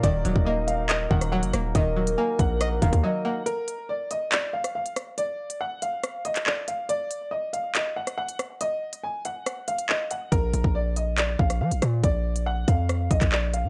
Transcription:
<<
  \new Staff \with { instrumentName = "Grand piano" } { \time 4/4 \key ees \minor \tempo 4 = 140 d''4 ees''8 f''8 ees''8 ges''8 ges''8 r8 | ees''4 aes''8 ges''4 f''8 ees''8 ges''8 | bes'4 d''8 ees''8 d''8 f''8 f''8 r8 | d''4 ges''8 f''4 ees''8 d''8 f''8 |
d''4 ees''8 f''8 ees''8 ges''8 ges''8 r8 | ees''4 aes''8 ges''4 f''8 ees''8 ges''8 | bes'4 d''8 ees''8 d''8 f''8 f''8 r8 | d''4 ges''8 f''4 ees''8 d''8 f''8 | }
  \new Staff \with { instrumentName = "Soft synth lead" } { \time 4/4 \key ees \minor r1 | bes'2. r4 | r1 | r1 |
r1 | r1 | r1 | r1 | }
  \new Staff \with { instrumentName = "Accordion" } { \time 4/4 \key ees \minor <ges bes ees' bes'>1~ | <ges bes ees' bes'>1 | r1 | r1 |
r1 | r1 | r1 | r1 | }
  \new Staff \with { instrumentName = "Synth pluck" } { \clef bass \time 4/4 \key ees \minor ees8 ges8 bes4 ees''8 ees8 ges8 bes8 | ees8 ges8 bes4 ees''8 ees8 ges8 bes8 | r1 | r1 |
r1 | r1 | r1 | r1 | }
  \new Staff \with { instrumentName = "808-style bass" } { \clef bass \time 4/4 \key ees \minor ees,,8 ees,,16 ees,,4.~ ees,,16 ees,,8. ges,,16 ees,,8 | ees,,4 r8 bes,,4 ees,,16 ees,16 r4 | r1 | r1 |
r1 | r1 | bes,,8 bes,,16 bes,,4.~ bes,,16 bes,,8 f16 bes,,16 bes,8 | bes,,4. f,4 bes,,16 bes,,4 bes,16 | }
  \new DrumStaff \with { instrumentName = "Drums" } \drummode { \time 4/4 <hh bd>8 hh16 bd16 r8 hh8 <hc hh>8 bd16 <hh ss>16 r16 hh16 <hh ss>8 | <hh bd>8. hh16 r8 <hh bd>8 <hh ss>8 <hh bd>16 <hh bd>16 r4 | hh8 hh8 r8 hh8 <hc hh>8. <hh ss>16 r16 hh16 <hh ss>8 | hh8. hh16 r8 hh8 <hh ss>8 hh16 <hc hh>16 hc8 hh8 |
hh8 hh8 r8 hh8 <hc hh>8. <hh ss>16 r16 hh16 <hh ss>8 | hh8. hh16 r8 hh8 <hh ss>8 hh16 hh16 hc8 hh8 | <hh bd>8 hh16 bd16 r8 hh8 <hc hh>8 bd16 <hh ss>16 r16 hh16 <hh ss>8 | <hh bd>8. hh16 r8 <hh bd>8 <hh ss>8 <hh bd>16 <hc hh bd>16 hc8 hh8 | }
>>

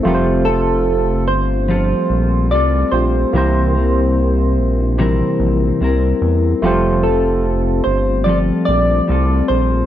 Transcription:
<<
  \new Staff \with { instrumentName = "Synth keys" } { \time 4/4 \key f \major \tempo 4 = 73 r8 a'4 c''4. d''8 c''8~ | c''2.~ c''8 r8 | r8 a'4 c''8 d''8 d''4 c''8 | }
  \new Staff \with { instrumentName = "Tine electric piano" } { \time 4/4 \key f \major <a f' g' bes' c''>2.~ <a f' g' bes' c''>8 <a f' g' c''>8 | <bes e' g' c''>1 | <a f' g' c''>1 | }
  \new Staff \with { instrumentName = "Clean electric guitar" } { \time 4/4 \key f \major <f g c' f' a'>8 <c' f' a'>4. <f g c' f' a'>4 <g c' f' a'>4 | <c e g c' e' bes'>8 <g c' e' bes'>4. <c e g c' e' bes'>4 <g c' e' bes'>4 | <f g c' f' a'>8 <c' f' a'>4. <f g c' f' a'>4 <g c' f' a'>4 | }
  \new Staff \with { instrumentName = "Analog synth bass" } { \clef bass \time 4/4 \key f \major f,,4. g,,4 bes,,8 c,8 bes,,8 | c,4. bes,,4 bes,,8 c,8 e,8 | f,,4. g,,4 bes,,8 c,8 bes,,8 | }
>>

